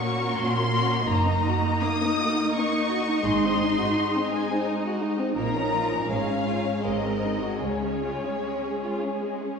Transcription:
Already playing: A#2 C#6
0.00 A#3 C#4 F#4 A#4
0.36 A#2 C6
0.71 A#3 C#4 F#4 A#4
1.07 F#1 F#2 A#3 D#4 D#5 A#5
1.26 D#4
1.46 F#4
1.65 D#4
1.82 A#3 D#6
2.03 D#4
2.20 F#4
2.37 D#4
2.55 A#3 C#6
2.73 D#4
2.89 F#4
3.08 D#4
3.24 G#1 G#2 G#3 C6
3.44 C4
3.62 D#4
3.79 F#4
3.97 D#4
4.15 C4
4.31 G#3 G#5
4.51 C4
4.67 D#4
4.84 F#4
5.01 D#4
5.19 C4
5.37 A#1 A#2 F3 A#3 A#4 A#5
5.56 C#4
5.73 F4
5.91 C#4
6.09 G#1 G#2 G#3 C#4 C#5 F5
6.28 C#4
6.46 F4
6.64 C#4
6.83 G#1 G#2 G#3 C4 A#4 D#5
7.03 C4
7.23 D#4
7.41 F#4
7.61 C#2 C#3 G#3 C#4 G#4 C#5
7.82 C#4
8.01 F4
8.22 C#4
8.42 G#3
8.63 C#4
8.82 F4
9.02 C#4
9.22 G#3
9.42 C#4

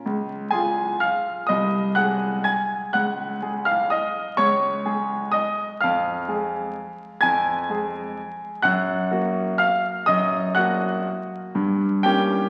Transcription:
0.06 C#2
0.51 G#3 F4 G#4 G#5
1.00 F5 F6
1.47 C2 D#5 D#6
1.95 G#3 G#4 F#5 F#6
2.44 G#5 G#6
2.93 C#2 F#5 F#6
3.42 G#3 G#4
3.65 F5 F6
3.90 D#5 D#6
4.37 C#2 C#5 C#6
4.86 G#3 G#4
5.32 D#5 D#6
5.81 F2 F5 F6
6.28 G#3 G#4
7.21 F2 G#5 G#6
7.69 G#3 G#4
8.62 F#2 F#5 F#6
9.11 A#3 F#4
9.58 F5 F6
10.06 F#2 D#5 D#6
10.55 A#3 F#4 F#5 F#6
11.55 G2
12.03 A#3 C#4 G4 G5

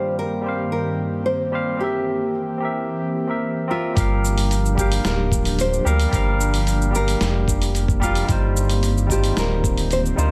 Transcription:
Already playing: G2 D#3 G3 A#3 C4 G4 C5 F5
0.19 A#4
0.42 G3 G4
0.46 C5 F5
0.72 A#4
1.26 C5
1.52 G3 G4 C5 F5
1.77 E3 C4 G4
1.82 A#4 E5
2.58 C4 G4
2.62 A#4 E5
3.27 C4 G4 A#4 E5
3.68 C4 F4 G4 A#4 E5
3.93 G1 F3 G3 A#3 D4 G4, kick, open hi-hat
3.98 A#4 F5, shaker
4.25 shaker
4.38 open hi-hat, shaker
4.51 open hi-hat, shaker
4.66 shaker
4.75 G3 G4, kick
4.79 G4 A#4 F5, shaker
4.92 open hi-hat, shaker
5.05 D1 A#4, snare, open hi-hat, shaker
5.32 kick, shaker
5.45 open hi-hat, shaker
5.59 C5, open hi-hat, shaker
5.73 shaker
5.84 D2 G3 G4 A#4 F5, shaker
6.00 open hi-hat, shaker
6.09 G1 G3 G4, kick, open hi-hat
6.13 A#4 F5, shaker
6.41 shaker
6.54 open hi-hat, shaker
6.67 open hi-hat, shaker
6.82 shaker
6.91 G3 G4
6.95 A#4 F5, shaker
7.08 open hi-hat, shaker
7.21 F1, snare, open hi-hat, shaker
7.48 kick, shaker
7.62 open hi-hat, shaker
7.75 open hi-hat, shaker
7.88 kick, shaker
8.00 G3 F4 G4 A#4 F5, kick, shaker
8.15 open hi-hat, shaker
8.25 G1 G3 D#4, kick, open hi-hat
8.29 D#3 C4 F4 C5, shaker
8.57 shaker
8.70 open hi-hat, shaker
8.83 open hi-hat, shaker
8.98 shaker
9.07 G3 D#4, kick
9.11 F4 G4 C5, shaker
9.24 open hi-hat, shaker
9.37 D1 A#4, snare, open hi-hat, shaker
9.64 kick, shaker
9.78 open hi-hat, shaker
9.91 C5, open hi-hat, shaker
10.06 shaker
10.16 D2 G3 D#4 F4 A#4 C5, shaker

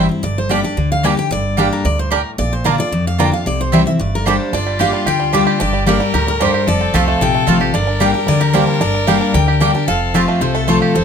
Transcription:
Already playing: G2
0.09 C4 E4
0.23 G1 G2 D5
0.38 C5
0.49 G3 A#3 D4 G4 D5 G5
0.63 D4 G4 D5
0.77 D2 D3
0.92 F5
1.03 G3 A#3 D4 G4 D5 G5
1.17 D4 G4 G5
1.31 G1 G2 D5
1.57 G3 A#3 D4 G4 D5 G5
1.73 A#4
1.85 D2 G2 D5
1.99 C5
2.11 A2 G3 A#3 D4 G4 A#4 D5 G5
2.38 A#1 A#2 D5
2.53 C5
2.64 D3 A#3 D4 F4 D5 A#5
2.78 D4 F4 D5
2.92 F2
3.07 F5
3.18 D3 A#3 D4 F4 D5 G5 A#5
3.32 D4 F4 F5
3.46 C2 C3 D5
3.61 C5
3.72 E3 G3 C4 E4 C5 G5
3.86 C4 E4 E5
3.99 G1 G2 D5
4.15 A#4
4.26 G3 A#3 D4 G4 C5 D5 G5
4.53 G1 G2 D4 F4 D5
4.67 G3
4.79 G3 A#3 D4 G4 D5 F5 G5
4.93 G3
5.06 D2 D3 G4 G5
5.20 G3
5.33 G3 A#3 D4 G4 D5 G5
5.47 G4
5.60 G1 G2 D4 G4 D5
5.73 G3
5.86 G3 A#3 D4 G4 A#4 D5 G5
6.00 G3 G4
6.14 D2 A2 G4 A#4
6.27 G3 A#4
6.40 G2 A#3 D4 G4 C5 D5 G5
6.54 G4
6.67 F1 F2 F3 A4 D5
6.81 C4
6.94 C2 F3 A3 C4 F4 G4 C5 F5 A5
7.08 A3
7.21 A#1 C3 F4 G5
7.34 A3
7.46 A1 F3 A3 C4 F4 C5 F5 A5
7.60 C4 F4 G4
7.74 G1 G2 D4 A#4 D5
7.87 D4
8.00 G3 A#3 D4 G4 D5 G5
8.14 D4 G4
8.27 D2 D3 G3 D5
8.40 G4 A#4
8.53 G3 A#3 D4 G4 C5 D5 G5
8.67 D4
8.81 G1 G2 D4 D5
8.94 D4
9.07 G3 A#3 D4 G4 D5 F5 G5
9.21 D4
9.34 D2 D3 G3 G5
9.48 G4
9.60 G3 A#3 D4 G4 D5 G5
9.74 D4 G4
9.88 F1 F2 F3 A4 F5
10.14 F3 A3 C4 F4 G4 C5 F5 A5
10.28 A3
10.41 C2 C3 F4 A4 C5
10.55 A3 A4
10.68 F3 A3 C4 F4 C5 A5
10.82 G4
10.95 F1 F2 C4 C5

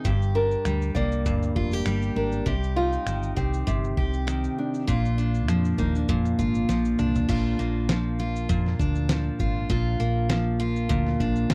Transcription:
Already playing: C3 D#3 C4 D#4
0.05 G1 G2 G4, kick, shaker
0.22 shaker
0.35 D4 A#4
0.51 shaker
0.65 D2 G3, finger snap, shaker
0.82 shaker
0.95 C2 A#3 D5, kick, shaker
1.12 shaker
1.26 D2 G2, kick, shaker
1.43 shaker
1.56 F1 F4, kick
1.72 G4, shaker
1.85 G1 G3, finger snap, shaker
2.02 shaker
2.16 G#1 D4 A#4
2.32 shaker
2.46 C2 C3 G4, kick, shaker
2.63 shaker
2.76 D#4 F4
2.93 shaker
3.06 G1 D#3, finger snap, shaker
3.23 shaker
3.36 C2 C4 G4, kick, shaker
3.54 shaker
3.67 G1 C3, kick, shaker
3.84 shaker
3.97 C2 G4, kick
4.13 shaker
4.27 D#3, finger snap, shaker
4.44 shaker
4.58 D4
4.74 shaker
4.87 A#1 A#2 F4, kick, shaker
5.05 shaker
5.18 D4, shaker
5.34 shaker
5.48 F2 F3, finger snap, shaker
5.65 shaker
5.78 D#2 A#3 D#4, kick, shaker
5.95 D4, shaker
6.08 F2 A#2, kick, shaker
6.25 finger snap, shaker
6.39 G#1 F4, kick, shaker
6.55 shaker
6.69 A#1 F3, snare, shaker
6.85 shaker
6.99 C2 D4, mid tom, shaker
7.15 floor tom, shaker
7.29 A#1 A#2 F4, kick, crash, shaker
7.59 A#1 A#3, shaker
7.89 F3, snare, shaker
8.19 F4, shaker
8.36 shaker
8.49 F2 A#2, kick, shaker
8.66 snare
8.79 D2 D4, kick, shaker
8.95 shaker
9.09 F3, snare, shaker
9.39 G#1 F4, kick, shaker
9.69 A#1 A#2 F4, kick, shaker
10.00 A#1 A#3, shaker
10.29 F3, snare, shaker
10.60 F4, shaker
10.76 shaker
10.89 D2 A#2, kick, shaker
11.07 snare
11.20 A#1 D4, kick, shaker
11.36 shaker
11.50 A#1 F3, snare, shaker

